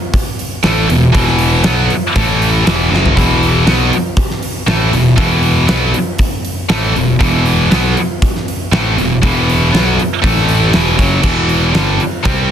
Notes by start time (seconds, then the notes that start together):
0.14 kick, open hi-hat
0.39 open hi-hat
0.63 A1 A2 E3 A3, snare, open hi-hat
0.88 E1 E2 B2, open hi-hat
1.12 E1 E2 B2 E3, kick, open hi-hat
1.27 snare
1.39 open hi-hat
1.64 B1 B2 F#3 B3, snare, open hi-hat
1.90 open hi-hat
2.16 A1 A2 E3 A3, kick, open hi-hat
2.42 open hi-hat
2.64 E2 B2 E3, snare, open hi-hat
2.90 F#1 F#2 C#3 F#3, snare
3.06 floor tom
3.16 E1 E2 B2 E3, kick, open hi-hat
3.43 open hi-hat
3.66 B1 B2 F#3 B3, snare, open hi-hat
3.93 open hi-hat
4.17 kick, open hi-hat
4.31 snare
4.43 open hi-hat
4.67 A1 A2 E3 A3, snare, open hi-hat
4.92 E1 E2 B2, open hi-hat
5.16 E1 E2 B2 E3, kick, open hi-hat
5.43 open hi-hat
5.67 B1 B2 F#3 B3, snare, open hi-hat
5.94 open hi-hat
6.18 kick, open hi-hat
6.45 open hi-hat
6.69 A1 A2 E3 A3, snare, open hi-hat
6.94 E1 E2 B2, open hi-hat
7.19 E1 E2 B2 E3, kick, open hi-hat
7.46 open hi-hat
7.70 B1 B2 F#3 B3, snare, open hi-hat
7.97 open hi-hat
8.22 kick, open hi-hat
8.36 snare
8.48 open hi-hat
8.72 A1 A2 E3 A3, snare, open hi-hat
8.97 E1 E2 B2, open hi-hat
9.22 E1 E2 B2 E3, kick, open hi-hat
9.50 open hi-hat
9.71 B1 B2 F#3 B3, snare, open hi-hat
10.00 open hi-hat
10.22 A1 A2 E3 A3, kick, open hi-hat
10.36 snare
10.49 open hi-hat
10.73 E1 E2 B2 E3, snare, open hi-hat
10.97 F#1 F#2 C#3 F#3, kick, open hi-hat
11.21 E1 E2 B2 E3, kick, crash
11.49 open hi-hat
11.72 G1 G2 D3 G3, snare, open hi-hat
12.00 open hi-hat
12.23 C2 C3 G3 C4, kick, open hi-hat